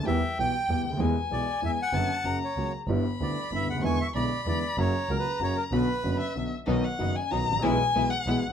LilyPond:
<<
  \new Staff \with { instrumentName = "Violin" } { \time 3/4 \key b \minor \tempo 4 = 190 g''2. | gis''2. | a''4 ais''4. r8 | b''2. |
cis'''4 b''2 | ais''2. | b''4. e''4 r8 | \key b \major dis''8 fis''4 gis''8 ais''4 |
gis''4. fis''4 r8 | }
  \new Staff \with { instrumentName = "Bandoneon" } { \time 3/4 \key b \minor e''4 g''4. r8 | r4 d''4 e''8 fis''8~ | fis''4. cis''4 r8 | r4 d''4 e''8 fis''8 |
gis''8 e''8 d''4 d''4 | cis''4 ais'16 b'8. cis''8 ais'8 | b'2 r4 | \key b \major r2. |
r2. | }
  \new Staff \with { instrumentName = "String section" } { \time 3/4 \key b \minor r2. | r2. | r2. | r2. |
r2. | r2. | r2. | \key b \major <fis b dis'>8 r8 <fis b dis'>8 r8 <fis b dis'>8 r8 |
<gis b e'>8 r8 <gis b e'>8 r8 <gis b e'>8 r8 | }
  \new Staff \with { instrumentName = "Grand piano" } { \clef bass \time 3/4 \key b \minor <e, e g b g'>8 r8 <b,, b, e g b g'>8 r8 <e, e g b g'>8 r32 cis,32 d,32 dis,32 | <e, e gis b gis'>8 r8 <b,, b, e gis b gis'>8 r8 <e, e gis b gis'>8 r8 | <fis, d fis b fis'>8 r8 <fis, cis fis ais fis'>8 r8 <cis, cis fis ais fis'>8 r8 | <g,, g, d g b e'>8 r8 <d, d g b e'>8 r8 <g,, g, d g b e'>8 r32 cis,32 d,32 dis,32 |
<e, d e gis b e'>8 r8 <b,, b, d gis b e'>8 r8 <e, d e gis b e'>8 r8 | <fis, cis fis ais fis'>8 r8 <cis, cis fis ais fis'>8 r8 <fis, cis fis ais fis'>8 r8 | <b,, b, d fis b fis'>8 r8 <fis,, fis, d fis b fis'>8 r8 <b,, b, d fis b fis'>8 r8 | \key b \major <b,, b, dis fis b fis'>8 r8 <fis,, fis, dis fis b fis'>8 r8 <b,, b, dis fis b fis'>8 r32 gis,,32 a,,32 ais,,32 |
<b,, b, e gis b gis'>8 r8 <b,, b, e gis b gis'>8 r8 <b,, b, e gis b gis'>8 r32 ais,,32 r16 | }
  \new Staff \with { instrumentName = "Double bass" } { \clef bass \time 3/4 \key b \minor e,8 r8 b,,8 r8 e,8 d,8 | e,8 r8 b,,8 r8 e,8 r8 | fis,,8 r8 fis,,8 r8 cis,8 r8 | g,,8 r8 d,8 r8 g,,8 d,8 |
e,8 r8 b,,8 r8 e,8 r8 | fis,,8 r8 cis,8 r8 fis,,8 r8 | b,,8 r8 fis,,8 r8 b,,8 r8 | \key b \major b,,8 r8 fis,,8 r8 b,,8 a,,8 |
b,,8 r8 b,,8 r8 b,,8 b,,8 | }
>>